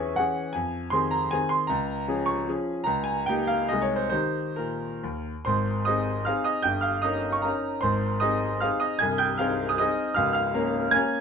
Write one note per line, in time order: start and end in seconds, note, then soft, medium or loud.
0.00 0.20 E2 medium
0.00 0.14 E3 soft
0.00 0.14 C#4 medium
0.00 0.14 G#4 medium
0.00 0.20 G#5 medium
0.00 0.17 C#6 medium
0.16 0.51 E3 soft
0.16 0.51 C#4 soft
0.16 0.52 G#4 soft
0.16 0.54 F#5 medium
0.53 0.92 F2 medium
0.53 0.92 G#5 medium
0.90 1.29 D#3 medium
0.90 1.29 C4 medium
0.90 1.29 G#4 medium
0.90 1.12 C6 medium
1.11 1.32 A#5 medium
1.31 1.66 D#3 soft
1.31 1.66 C4 medium
1.31 1.67 G#4 medium
1.31 1.51 G#5 medium
1.49 1.69 C6 medium
1.67 2.07 C#2 medium
1.67 2.27 A#5 medium
2.08 2.44 F3 medium
2.08 2.44 C#4 medium
2.08 2.44 G#4 medium
2.26 2.46 C#6 medium
2.48 2.82 F3 soft
2.48 2.83 C#4 soft
2.48 2.83 G#4 medium
2.84 3.26 C#2 medium
2.84 3.05 A#5 loud
3.04 3.26 G#5 medium
3.26 3.66 A#3 soft
3.26 3.67 D#4 medium
3.26 3.67 G4 medium
3.26 3.48 G5 medium
3.47 3.69 F5 medium
3.69 4.11 C2 medium
3.69 4.08 G#3 soft
3.69 4.08 D#4 soft
3.69 4.09 G#4 soft
3.69 3.83 D#5 medium
3.82 3.96 C#5 medium
3.96 4.08 C5 medium
4.10 4.44 D#3 soft
4.10 4.49 D#4 soft
4.10 4.49 G4 soft
4.10 4.57 C5 medium
4.56 4.90 A#2 soft
4.56 5.24 A#4 medium
5.04 5.33 D#2 soft
5.45 5.86 G#1 medium
5.45 5.86 G#2 medium
5.45 5.84 C5 medium
5.45 5.86 C6 medium
5.85 6.23 C4 soft
5.85 6.24 D#4 soft
5.85 6.24 G#4 medium
5.85 6.24 D#5 medium
5.85 6.26 D#6 medium
6.25 6.61 C4 soft
6.25 6.62 D#4 soft
6.25 6.62 G#4 soft
6.25 6.44 F5 medium
6.25 6.45 F6 medium
6.44 6.63 D#5 medium
6.44 6.64 D#6 medium
6.62 7.03 G1 medium
6.62 7.03 G2 medium
6.62 6.82 G5 medium
6.62 6.83 G6 medium
6.81 7.02 F5 medium
6.81 7.03 F6 medium
7.02 7.41 C#4 soft
7.02 7.41 D#4 soft
7.02 7.41 A#4 soft
7.02 7.32 D#5 medium
7.02 7.34 D#6 medium
7.32 7.44 C#6 medium
7.42 7.79 C#4 soft
7.42 7.80 D#4 soft
7.42 7.80 A#4 medium
7.42 7.82 A#5 medium
7.81 8.22 G#1 medium
7.81 8.22 G#2 medium
7.81 8.20 C5 medium
7.81 8.22 C6 medium
8.20 8.59 C4 soft
8.20 8.59 D#4 medium
8.20 8.59 G#4 medium
8.20 8.59 D#5 medium
8.20 8.62 D#6 medium
8.61 8.97 C4 soft
8.61 8.98 D#4 soft
8.61 8.98 G#4 medium
8.61 8.80 F5 medium
8.61 8.81 F6 medium
8.80 8.99 D#5 medium
8.80 9.00 D#6 medium
8.99 9.39 C1 medium
8.99 9.39 C2 medium
8.99 9.18 G#5 medium
8.99 9.19 G#6 medium
9.18 9.38 G5 medium
9.18 9.39 G6 medium
9.38 9.76 C4 medium
9.38 9.76 D#4 medium
9.38 9.76 G#4 medium
9.38 9.68 F5 medium
9.38 9.69 F6 medium
9.69 9.77 D#6 medium
9.78 10.13 C4 soft
9.78 10.13 D#4 soft
9.78 10.13 G#4 medium
9.78 10.14 D#5 medium
9.78 10.15 D#6 medium
10.14 10.53 C#1 medium
10.14 10.53 C#2 medium
10.14 10.33 F5 medium
10.14 10.32 F6 loud
10.33 10.89 F5 medium
10.33 10.92 F6 medium
10.54 10.89 A#3 medium
10.54 10.89 C#4 medium
10.54 10.89 A#4 medium
10.91 11.21 A#3 soft
10.91 11.21 C#4 medium
10.91 11.21 A#4 medium
10.91 11.21 G#5 medium
10.91 11.21 G#6 loud